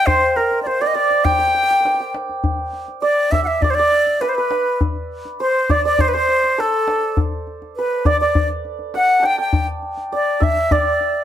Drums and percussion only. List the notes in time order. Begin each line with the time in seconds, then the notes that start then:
0.07 tombak dum
0.22 tombak ka
0.36 tombak ka
0.51 tombak ka
0.66 tombak ka
1.11 tombak ka
1.25 tombak dum
1.41 tombak ka
1.56 tombak ka
1.71 tombak ka
1.85 tombak tek
2.15 tombak tek
2.29 tombak ka
2.44 tombak dum
2.59 tombak ka
2.73 tombak ka
2.88 tombak ka
3.32 tombak dum
3.62 tombak dum
3.77 tombak ka
3.92 tombak ka
4.07 tombak ka
4.21 tombak tek
4.51 tombak tek
4.81 tombak dum
4.96 tombak ka
5.25 tombak ka
5.70 tombak dum
5.99 tombak dum
6.14 tombak ka
6.28 tombak ka
6.44 tombak ka
6.59 tombak tek
6.88 tombak tek
7.17 tombak dum
7.32 tombak ka
7.47 tombak ka
7.62 tombak ka
8.05 tombak dum
8.35 tombak dum
8.50 tombak ka
8.65 tombak ka
8.79 tombak ka
8.94 tombak tek
9.23 tombak tek
9.53 tombak dum
9.68 tombak ka
9.82 tombak ka
9.97 tombak ka
10.12 tombak ka
10.42 tombak dum
10.57 tombak ka
10.71 tombak dum
10.86 tombak ka
11.01 tombak ka